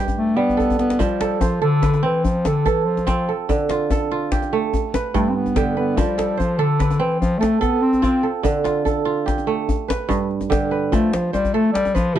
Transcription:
Already playing: G2 F4 G4 A4 B4
0.08 djembe bass
0.16 A3, djembe slap
0.29 djembe slap
0.36 G3 B3
0.49 djembe bass
0.57 A4, djembe bass
0.70 djembe bass
0.79 B3, djembe slap
0.90 djembe slap
0.99 F3 G3, djembe tone, djembe bass
1.11 djembe slap
1.21 A4, djembe slap
1.40 F3 C5, djembe tone, djembe bass
1.62 D3 A4
1.82 B4, djembe slap, djembe bass
1.94 djembe tone
2.03 E3 C4
2.15 djembe slap
2.24 F3, djembe bass
2.35 djembe slap
2.45 D3 A4, djembe slap, djembe tone
2.66 E3 A4, djembe slap, djembe bass
2.85 F3
2.97 djembe slap, djembe tone
3.07 C4 F4, djembe slap, djembe bass
3.29 A4
3.49 D3, djembe tone, djembe bass
3.69 F4, djembe slap
3.91 A4, djembe tone, djembe bass
4.11 F4
4.32 G4, djembe slap, djembe bass
4.42 djembe tone
4.52 A3, djembe slap
4.64 djembe slap
4.74 djembe bass
4.84 djembe slap
4.94 B4, djembe slap, djembe tone
5.14 G2 A3, djembe slap, djembe bass
5.29 C4
5.36 B3
5.46 djembe slap, djembe tone
5.56 D3 G4, djembe slap, djembe bass
5.77 B3 B4
5.97 F3 G3, djembe tone, djembe bass
6.18 A4, djembe slap
6.37 F3 C5, djembe bass
6.58 D3 A4
6.79 B4, djembe slap, djembe bass
6.91 djembe tone
6.99 E3 C4
7.12 djembe slap
7.20 F3, djembe bass
7.33 djembe slap
7.39 A3 A4, djembe slap, djembe tone
7.61 B3 A4, djembe slap, djembe bass
7.82 C4
7.93 djembe slap, djembe tone
8.02 C4 F4, djembe bass
8.23 A4
8.43 D3, djembe tone, djembe bass
8.64 F4, djembe slap
8.85 A4, djembe bass
9.05 F4
9.17 djembe slap
9.26 G4, djembe slap, djembe bass
9.38 djembe slap, djembe tone
9.47 A3
9.69 djembe bass
9.88 B4, djembe slap, djembe tone
10.09 G2, djembe bass
10.21 djembe slap
10.31 djembe slap
10.41 djembe slap, djembe tone
10.50 D3 G4, djembe slap, djembe bass
10.71 B4
10.92 F3 A3, djembe slap, djembe tone, djembe bass
11.13 F3, djembe slap
11.33 G3 C5, djembe slap, djembe tone
11.45 djembe slap, djembe bass
11.54 A3 A4
11.65 djembe slap
11.73 G3, djembe slap
11.85 djembe tone
11.94 F3 B4, djembe bass
12.15 C3 F3 F4

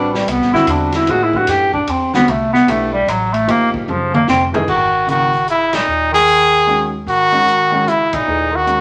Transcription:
Already playing: A1 G3 C4 D4 F#4 B4
0.14 G3, snare
0.27 C2 B3, hi-hat pedal, ride
0.40 A1, snare
0.53 G1 D3 G3 C4 E4 F#4, snare
0.67 E2 D4, hi-hat pedal, ride
0.92 E4, snare, ride
1.07 A2 F3 A#3 D#4 F#4 G#4, ride
1.23 E4
1.33 E3 A3 D4 F#4 G4, kick
1.47 F#2 G4, snare, hi-hat pedal, ride
1.73 D4, kick
1.87 E2 C4, ride
2.14 D3 G3 B3 C4 F#4, snare
2.26 C2 A3, ride
2.53 B3, snare
2.67 B1 E3 A3 D4 G4, hi-hat pedal, ride
2.93 G3
3.07 A1 F#3, hi-hat pedal, ride
3.33 A3, ride
3.47 G1 F3 A#3 D#4 G4, ride
3.72 C#3, muted upright bass stroke, kick
3.88 F#1 F3, high tom
4.14 A#3, mid tom
4.27 F1 C4, snare, hi-hat pedal
4.53 E3 A3 D#4 G#4, floor tom
4.67 G#1 D#3 F#4, kick, crash
5.07 C#3 D#3 F#3 A#3 E4, closed hi-hat
5.11 F#4
5.33 open hi-hat
5.46 C#3 E4, closed hi-hat
5.73 A#2 D#4, snare, ride
5.88 D#2
6.12 D#3 G#4, snare
6.27 closed hi-hat
6.53 open hi-hat
6.67 D#3 G#3 C#4 F#4, open hi-hat
7.06 G#1 D#3 F#4, open hi-hat
7.32 D#3 G#3 C#4 F#4
7.48 closed hi-hat
7.71 D#3 G#3 C#4 F#4
7.88 C#3 E4, closed hi-hat
8.13 A#2 D#4, muted upright bass stroke, kick, ride
8.27 D#2 E3 A3 D#4 G#4
8.51 D#3
8.56 F#4
8.66 D#3 G#3 C#4 F#4, closed hi-hat

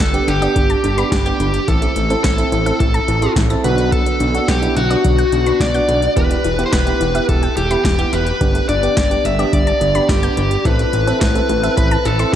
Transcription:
0.00 G1 A4, kick, snare, closed hi-hat
0.14 B3 D4 G4, closed hi-hat
0.28 G1 D3 G4, closed hi-hat
0.42 B3 D4 G4 D5, closed hi-hat
0.56 G1 D3, kick, closed hi-hat
0.70 A5, closed hi-hat
0.84 G1 D3, closed hi-hat
0.98 B3 D4 G4 B5, closed hi-hat
1.12 G1 D3 G4, kick, snare, closed hi-hat
1.26 B3 D4 G4 G6, closed hi-hat
1.40 G1 D3, closed hi-hat
1.54 closed hi-hat
1.68 A1 E3 C4 E4 A4, kick, closed hi-hat
1.82 A3, closed hi-hat
1.96 A1 E3, closed hi-hat
2.10 C4 E4 A4, closed hi-hat
2.24 A1 A4, kick, snare, closed hi-hat
2.38 C4 E4 A4, closed hi-hat
2.52 A1 E3, closed hi-hat
2.66 C4 E4 A4 E5, closed hi-hat
2.80 A1 E3 A4, kick, closed hi-hat
2.94 A5, closed hi-hat
3.08 A1 E3, closed hi-hat
3.22 C4 E4 A4 C6, closed hi-hat
3.36 A1 E3, kick, snare, closed hi-hat
3.50 C4 E4 A4 A6, closed hi-hat
3.64 B1 D3 B3 D4 F#4 B4, closed hi-hat
3.78 closed hi-hat
3.92 D3 A4, kick, closed hi-hat
4.06 F#3, closed hi-hat
4.20 B1 D3, closed hi-hat
4.34 B3 D4 F#4, closed hi-hat
4.48 B1 G4, kick, snare, closed hi-hat
4.62 B3 D4 E4, closed hi-hat
4.76 B1 D3 F#4, closed hi-hat
4.90 B3 D4 F#4 D5, closed hi-hat
5.04 B1 D3, kick, closed hi-hat
5.18 F#5, closed hi-hat
5.32 B1 D3, closed hi-hat
5.46 B3 D4 F#4 B5, closed hi-hat
5.60 B1 D3 D5, kick, snare, closed hi-hat
5.74 B3 D4 F#4 F#6, closed hi-hat
5.89 B1 D3, closed hi-hat
6.02 closed hi-hat
6.17 E1 E3 B3 E4 G4 B4, kick, closed hi-hat
6.31 G3, closed hi-hat
6.44 E1 E3, closed hi-hat
6.59 B3 E4 G4, closed hi-hat
6.66 C5
6.73 E1 B4, kick, snare, closed hi-hat
6.87 B3 E4 G4, closed hi-hat
7.01 E1 E3, closed hi-hat
7.15 B3 E4 G4 E5, closed hi-hat
7.29 E1 E3 A4, kick, closed hi-hat
7.43 G5, closed hi-hat
7.57 E1 E3 G4, closed hi-hat
7.71 B3 E4 G4 B5, closed hi-hat
7.85 E1 E3 G4, kick, snare, closed hi-hat
7.99 B3 E4 G4 G6, closed hi-hat
8.13 E1 E3 B4, closed hi-hat
8.27 closed hi-hat
8.41 G1 D3 B3 D4 G4, kick, closed hi-hat
8.55 A3, closed hi-hat
8.69 G1 D3 D5, closed hi-hat
8.83 B3 D4 G4, closed hi-hat
8.97 G1 D5, kick, snare, closed hi-hat
9.11 B3 D4 G4, closed hi-hat
9.25 G1 D3 E5, closed hi-hat
9.39 B3 D4 G4 D5, closed hi-hat
9.53 G1 D3 D5, kick, closed hi-hat
9.67 A5, closed hi-hat
9.81 G1 D3, closed hi-hat
9.95 B3 D4 G4 B5, closed hi-hat
10.09 G1 D3 G4, kick, snare, closed hi-hat
10.23 B3 D4 G4 G6, closed hi-hat
10.37 G1 D3, closed hi-hat
10.51 closed hi-hat
10.65 A1 E3 C4 E4 A4 B4, kick, closed hi-hat
10.79 A3, closed hi-hat
10.93 A1 E3, closed hi-hat
11.07 C4 E4 A4, closed hi-hat
11.21 A1 B4, kick, snare, closed hi-hat
11.35 C4 E4 A4, closed hi-hat
11.49 A1 E3, closed hi-hat
11.63 C4 E4 A4 E5, closed hi-hat
11.77 A1 E3 B4, kick, closed hi-hat
11.91 A5, closed hi-hat
12.05 A1 E3 A4, closed hi-hat
12.19 C4 E4 A4 C6, closed hi-hat

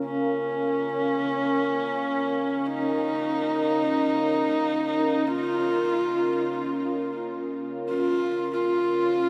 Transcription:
Already playing: C#4 A#4 F5
0.04 C#4
2.66 D#4
5.27 F4
7.88 F4
8.53 F4

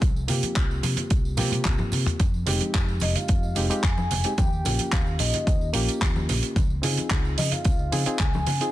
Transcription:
0.01 C2, kick, closed hi-hat, tambourine, high conga
0.16 tambourine
0.28 C3 A#3 C4 F4 G4, open hi-hat, tambourine, low conga
0.43 muted fingered electric bass stroke, closed hi-hat, tambourine, high conga
0.56 C2, kick, clap, closed hi-hat, tambourine
0.71 tambourine
0.83 C3, open hi-hat, tambourine, high conga
0.97 closed hi-hat, tambourine, low conga
1.10 C2, kick, closed hi-hat, tambourine
1.25 tambourine
1.37 C3 A#3 C4 F4 G4, open hi-hat, high tom, tambourine, high conga
1.51 closed hi-hat, high tom, tambourine
1.65 C2, kick, clap, closed hi-hat, mid tom, tambourine
1.78 mid tom, tambourine, high conga
1.92 C3, open hi-hat, tambourine, low conga
2.06 closed hi-hat, mid tom, tambourine
2.19 F2, kick, closed hi-hat, tambourine, high conga
2.34 tambourine
2.46 F1 G#3 C4 D#4 G4, open hi-hat, tambourine, low conga
2.60 muted fingered electric bass stroke, closed hi-hat, tambourine, high conga
2.74 F2, kick, clap, closed hi-hat, tambourine
2.88 tambourine
3.00 F1 D#5, open hi-hat, tambourine, high conga
3.15 F5, closed hi-hat, tambourine, low conga
3.28 F2, kick, closed hi-hat, tambourine
3.43 tambourine
3.55 F1 G#3 C4 D#4 G4, open hi-hat, tambourine, high conga
3.69 G#3 C4 D#4 G4, muted fingered electric bass stroke, closed hi-hat, tambourine
3.83 F2 G#5, kick, clap, closed hi-hat, tambourine
3.97 tambourine, high conga
4.11 F1, open hi-hat, tambourine, low conga
4.24 G#3 C4 D#4 G4, closed hi-hat, tambourine
4.38 D#2 G5, kick, closed hi-hat, tambourine, high conga
4.53 tambourine
4.64 A#1 A#3 C#4 F4 G4, open hi-hat, tambourine, low conga
4.79 muted fingered electric bass stroke, closed hi-hat, tambourine, high conga
4.92 D#2 F5, kick, clap, closed hi-hat, tambourine
5.07 tambourine
5.19 A#1 D#5, open hi-hat, tambourine, high conga
5.33 closed hi-hat, tambourine, low conga
5.47 D#2, kick, closed hi-hat, tambourine
5.61 tambourine
5.73 A#1 A#3 C#4 F4 G4, open hi-hat, tambourine, high conga
5.88 muted fingered electric bass stroke, closed hi-hat, tambourine
6.01 D#2, kick, clap, closed hi-hat, tambourine
6.16 tambourine, high conga
6.29 A#1, open hi-hat, tambourine, low conga
6.43 closed hi-hat, tambourine
6.56 C#2, kick, closed hi-hat, tambourine, high conga
6.70 tambourine
6.82 C#3 C4 D#4 F4 G#4, open hi-hat, tambourine, low conga
6.97 muted fingered electric bass stroke, closed hi-hat, tambourine, high conga
7.11 C#2, kick, clap, closed hi-hat, tambourine
7.25 tambourine
7.38 C#3 D#5, open hi-hat, tambourine, high conga
7.51 F5, closed hi-hat, tambourine, low conga
7.64 C#2, kick, closed hi-hat, tambourine
7.79 tambourine
7.92 C#3 C4 D#4 F4 G#4, open hi-hat, tambourine, high conga
8.06 C4 D#4 F4 G#4, muted fingered electric bass stroke, closed hi-hat, tambourine
8.19 C#2 G#5, kick, clap, closed hi-hat, tambourine
8.33 tambourine, high conga
8.47 C#3, open hi-hat, tambourine, low conga
8.61 C4 D#4 F4 G#4, closed hi-hat, tambourine

